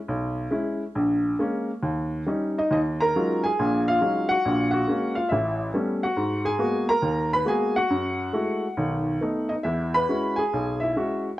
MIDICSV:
0, 0, Header, 1, 2, 480
1, 0, Start_track
1, 0, Key_signature, -6, "minor"
1, 0, Tempo, 437956
1, 1039, Time_signature, 4, 2, 24, 8
1, 3935, Tempo, 431655
1, 8735, Tempo, 439560
1, 12544, End_track
2, 0, Start_track
2, 0, Title_t, "Upright piano"
2, 0, Program_c, 0, 0
2, 91, Note_on_c, 0, 35, 66
2, 502, Note_off_c, 0, 35, 0
2, 555, Note_on_c, 0, 56, 51
2, 562, Note_on_c, 0, 61, 45
2, 568, Note_on_c, 0, 64, 55
2, 894, Note_off_c, 0, 56, 0
2, 898, Note_off_c, 0, 61, 0
2, 901, Note_off_c, 0, 64, 0
2, 1045, Note_on_c, 0, 34, 63
2, 1455, Note_off_c, 0, 34, 0
2, 1524, Note_on_c, 0, 58, 46
2, 1526, Note_on_c, 0, 56, 52
2, 1534, Note_on_c, 0, 61, 57
2, 1857, Note_off_c, 0, 58, 0
2, 1858, Note_off_c, 0, 56, 0
2, 1862, Note_off_c, 0, 61, 0
2, 2001, Note_on_c, 0, 39, 65
2, 2426, Note_off_c, 0, 39, 0
2, 2482, Note_on_c, 0, 55, 45
2, 2488, Note_on_c, 0, 61, 43
2, 2497, Note_on_c, 0, 63, 50
2, 2814, Note_off_c, 0, 63, 0
2, 2830, Note_on_c, 0, 63, 58
2, 2831, Note_off_c, 0, 55, 0
2, 2834, Note_off_c, 0, 61, 0
2, 2835, Note_on_c, 0, 75, 73
2, 2967, Note_on_c, 0, 39, 58
2, 2969, Note_off_c, 0, 75, 0
2, 2973, Note_off_c, 0, 63, 0
2, 2986, Note_on_c, 0, 75, 78
2, 2992, Note_on_c, 0, 63, 62
2, 3058, Note_off_c, 0, 75, 0
2, 3063, Note_off_c, 0, 63, 0
2, 3294, Note_on_c, 0, 82, 83
2, 3309, Note_on_c, 0, 70, 70
2, 3390, Note_off_c, 0, 39, 0
2, 3461, Note_on_c, 0, 56, 41
2, 3462, Note_on_c, 0, 54, 47
2, 3464, Note_on_c, 0, 61, 43
2, 3464, Note_on_c, 0, 63, 41
2, 3465, Note_on_c, 0, 65, 51
2, 3741, Note_off_c, 0, 82, 0
2, 3749, Note_off_c, 0, 70, 0
2, 3766, Note_on_c, 0, 80, 77
2, 3786, Note_on_c, 0, 68, 64
2, 3795, Note_off_c, 0, 56, 0
2, 3796, Note_off_c, 0, 54, 0
2, 3797, Note_off_c, 0, 61, 0
2, 3797, Note_off_c, 0, 63, 0
2, 3798, Note_off_c, 0, 65, 0
2, 3938, Note_on_c, 0, 34, 62
2, 3939, Note_on_c, 0, 46, 62
2, 4218, Note_off_c, 0, 80, 0
2, 4229, Note_off_c, 0, 68, 0
2, 4257, Note_on_c, 0, 77, 90
2, 4274, Note_on_c, 0, 65, 57
2, 4355, Note_off_c, 0, 34, 0
2, 4356, Note_off_c, 0, 46, 0
2, 4402, Note_off_c, 0, 65, 0
2, 4405, Note_on_c, 0, 54, 47
2, 4406, Note_on_c, 0, 56, 39
2, 4408, Note_on_c, 0, 61, 43
2, 4412, Note_on_c, 0, 63, 38
2, 4419, Note_on_c, 0, 65, 46
2, 4704, Note_off_c, 0, 77, 0
2, 4711, Note_on_c, 0, 78, 90
2, 4737, Note_on_c, 0, 66, 58
2, 4749, Note_off_c, 0, 54, 0
2, 4750, Note_off_c, 0, 56, 0
2, 4751, Note_off_c, 0, 61, 0
2, 4752, Note_off_c, 0, 63, 0
2, 4756, Note_off_c, 0, 65, 0
2, 4894, Note_on_c, 0, 34, 61
2, 4901, Note_on_c, 0, 46, 59
2, 5162, Note_off_c, 0, 78, 0
2, 5179, Note_on_c, 0, 78, 73
2, 5184, Note_off_c, 0, 66, 0
2, 5209, Note_on_c, 0, 66, 61
2, 5312, Note_off_c, 0, 34, 0
2, 5316, Note_off_c, 0, 46, 0
2, 5365, Note_on_c, 0, 56, 45
2, 5374, Note_on_c, 0, 58, 46
2, 5378, Note_on_c, 0, 61, 48
2, 5658, Note_off_c, 0, 66, 0
2, 5673, Note_on_c, 0, 77, 70
2, 5690, Note_on_c, 0, 65, 53
2, 5691, Note_off_c, 0, 78, 0
2, 5707, Note_off_c, 0, 56, 0
2, 5712, Note_off_c, 0, 58, 0
2, 5714, Note_off_c, 0, 61, 0
2, 5823, Note_on_c, 0, 76, 68
2, 5839, Note_off_c, 0, 65, 0
2, 5847, Note_off_c, 0, 77, 0
2, 5856, Note_on_c, 0, 33, 64
2, 5857, Note_on_c, 0, 64, 51
2, 6270, Note_off_c, 0, 33, 0
2, 6282, Note_off_c, 0, 76, 0
2, 6300, Note_off_c, 0, 64, 0
2, 6321, Note_on_c, 0, 55, 48
2, 6321, Note_on_c, 0, 57, 45
2, 6331, Note_on_c, 0, 59, 43
2, 6334, Note_on_c, 0, 61, 48
2, 6651, Note_on_c, 0, 78, 70
2, 6658, Note_on_c, 0, 66, 59
2, 6661, Note_off_c, 0, 55, 0
2, 6661, Note_off_c, 0, 57, 0
2, 6666, Note_off_c, 0, 59, 0
2, 6667, Note_off_c, 0, 61, 0
2, 6799, Note_on_c, 0, 44, 58
2, 7097, Note_off_c, 0, 66, 0
2, 7114, Note_on_c, 0, 68, 67
2, 7122, Note_on_c, 0, 80, 87
2, 7141, Note_off_c, 0, 78, 0
2, 7218, Note_off_c, 0, 44, 0
2, 7265, Note_on_c, 0, 56, 52
2, 7266, Note_on_c, 0, 58, 41
2, 7272, Note_on_c, 0, 59, 44
2, 7276, Note_on_c, 0, 66, 54
2, 7569, Note_off_c, 0, 68, 0
2, 7573, Note_off_c, 0, 80, 0
2, 7603, Note_on_c, 0, 82, 93
2, 7615, Note_off_c, 0, 56, 0
2, 7616, Note_off_c, 0, 58, 0
2, 7616, Note_on_c, 0, 70, 72
2, 7619, Note_off_c, 0, 59, 0
2, 7621, Note_off_c, 0, 66, 0
2, 7752, Note_on_c, 0, 39, 65
2, 8055, Note_off_c, 0, 82, 0
2, 8061, Note_off_c, 0, 70, 0
2, 8097, Note_on_c, 0, 83, 91
2, 8113, Note_on_c, 0, 71, 65
2, 8178, Note_off_c, 0, 39, 0
2, 8228, Note_on_c, 0, 56, 47
2, 8230, Note_on_c, 0, 58, 41
2, 8233, Note_on_c, 0, 59, 42
2, 8238, Note_on_c, 0, 66, 51
2, 8251, Note_off_c, 0, 71, 0
2, 8258, Note_off_c, 0, 83, 0
2, 8261, Note_on_c, 0, 80, 79
2, 8273, Note_on_c, 0, 68, 64
2, 8558, Note_off_c, 0, 80, 0
2, 8565, Note_off_c, 0, 68, 0
2, 8572, Note_off_c, 0, 66, 0
2, 8574, Note_on_c, 0, 78, 83
2, 8580, Note_off_c, 0, 56, 0
2, 8581, Note_off_c, 0, 58, 0
2, 8583, Note_off_c, 0, 59, 0
2, 8589, Note_on_c, 0, 66, 63
2, 8730, Note_on_c, 0, 42, 57
2, 9147, Note_off_c, 0, 42, 0
2, 9192, Note_off_c, 0, 66, 0
2, 9198, Note_on_c, 0, 56, 47
2, 9199, Note_on_c, 0, 57, 44
2, 9208, Note_on_c, 0, 66, 50
2, 9209, Note_on_c, 0, 64, 43
2, 9544, Note_off_c, 0, 56, 0
2, 9544, Note_off_c, 0, 57, 0
2, 9549, Note_off_c, 0, 64, 0
2, 9549, Note_off_c, 0, 66, 0
2, 9679, Note_on_c, 0, 35, 58
2, 9681, Note_on_c, 0, 51, 56
2, 10103, Note_off_c, 0, 35, 0
2, 10105, Note_off_c, 0, 51, 0
2, 10159, Note_on_c, 0, 59, 41
2, 10163, Note_on_c, 0, 57, 43
2, 10172, Note_on_c, 0, 63, 52
2, 10464, Note_on_c, 0, 75, 64
2, 10479, Note_off_c, 0, 63, 0
2, 10496, Note_on_c, 0, 63, 47
2, 10507, Note_off_c, 0, 59, 0
2, 10509, Note_off_c, 0, 57, 0
2, 10519, Note_off_c, 0, 75, 0
2, 10550, Note_off_c, 0, 63, 0
2, 10555, Note_off_c, 0, 78, 0
2, 10620, Note_on_c, 0, 76, 70
2, 10632, Note_on_c, 0, 40, 56
2, 10635, Note_on_c, 0, 64, 56
2, 10947, Note_off_c, 0, 64, 0
2, 10959, Note_on_c, 0, 83, 91
2, 10973, Note_off_c, 0, 76, 0
2, 10973, Note_on_c, 0, 71, 66
2, 11063, Note_off_c, 0, 40, 0
2, 11117, Note_on_c, 0, 56, 44
2, 11120, Note_on_c, 0, 61, 43
2, 11120, Note_on_c, 0, 66, 46
2, 11123, Note_on_c, 0, 64, 43
2, 11415, Note_on_c, 0, 80, 72
2, 11424, Note_off_c, 0, 71, 0
2, 11442, Note_on_c, 0, 68, 64
2, 11466, Note_off_c, 0, 83, 0
2, 11467, Note_off_c, 0, 56, 0
2, 11468, Note_off_c, 0, 61, 0
2, 11468, Note_off_c, 0, 66, 0
2, 11470, Note_off_c, 0, 64, 0
2, 11603, Note_on_c, 0, 35, 64
2, 11894, Note_on_c, 0, 76, 65
2, 11897, Note_off_c, 0, 68, 0
2, 11928, Note_on_c, 0, 64, 49
2, 11933, Note_off_c, 0, 80, 0
2, 12026, Note_off_c, 0, 35, 0
2, 12062, Note_off_c, 0, 64, 0
2, 12070, Note_on_c, 0, 61, 40
2, 12071, Note_on_c, 0, 56, 47
2, 12078, Note_on_c, 0, 64, 39
2, 12082, Note_on_c, 0, 66, 53
2, 12359, Note_off_c, 0, 76, 0
2, 12419, Note_off_c, 0, 56, 0
2, 12419, Note_off_c, 0, 61, 0
2, 12423, Note_off_c, 0, 64, 0
2, 12425, Note_off_c, 0, 66, 0
2, 12544, End_track
0, 0, End_of_file